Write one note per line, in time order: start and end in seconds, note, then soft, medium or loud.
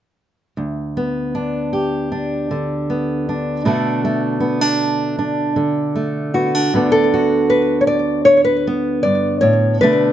0.57 3.65 D2 soft
0.97 2.89 B3 soft
1.35 2.11 D4 soft
1.73 3.60 G4 soft
2.12 3.28 D4 soft
2.51 3.65 D3 soft
2.90 3.66 B3 soft
3.29 3.67 D4 soft
3.65 6.68 B2 medium
3.65 5.55 D3 soft
3.65 4.04 A3 soft
3.65 4.40 D4 soft
3.65 4.82 F#4 soft
4.05 5.94 A3 soft
4.40 4.61 B3 soft
4.61 5.17 D4 soft
5.19 6.34 D4 soft
5.56 6.74 D3 soft
5.96 6.68 A3 soft
6.34 6.55 B3 soft
6.34 6.91 F#4 medium
6.55 6.73 D4 soft
6.74 9.04 D2 medium
6.74 9.82 D3 soft
6.74 8.67 B3 soft
6.74 9.84 D4 soft
6.92 7.49 A4 medium
7.14 9.78 F#4 soft
7.50 7.80 B4 medium
7.81 7.87 C#5 soft
7.87 8.25 D5 medium
8.25 8.44 C#5 medium
8.45 9.02 B4 medium
8.67 9.83 B3 soft
9.03 9.43 G2 soft
9.03 9.39 D5 medium
9.41 9.81 A2 soft
9.41 9.80 C#5 medium
9.81 10.12 B2 soft
9.81 10.12 D3 soft
9.81 10.12 A3 soft
9.81 10.12 D4 medium
9.81 10.12 B4 medium